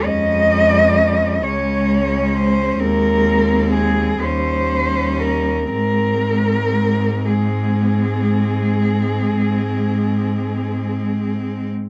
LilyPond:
<<
  \new Staff \with { instrumentName = "Cello" } { \time 12/8 \key aes \major \tempo 4. = 40 ees''4. des''4 c''8 bes'4 aes'8 c''4 bes'8 | bes'4. aes'1 r8 | }
  \new Staff \with { instrumentName = "Cello" } { \time 12/8 \key aes \major des'4. des'4. c'4. des'4. | c'4. c'1~ c'8 | }
  \new Staff \with { instrumentName = "Cello" } { \clef bass \time 12/8 \key aes \major aes4. aes4. aes4. g4. | aes4. aes1~ aes8 | }
  \new Staff \with { instrumentName = "Cello" } { \clef bass \time 12/8 \key aes \major f,4. des,4. ees,4. ees,4. | aes,1. | }
>>